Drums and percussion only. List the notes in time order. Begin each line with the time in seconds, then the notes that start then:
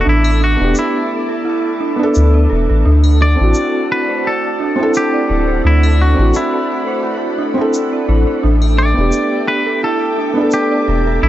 0.24 triangle
0.75 shaker
2.15 shaker
3.04 triangle
3.54 shaker
4.94 shaker
5.83 triangle
6.34 shaker
7.74 shaker
8.62 triangle
9.12 shaker
10.51 shaker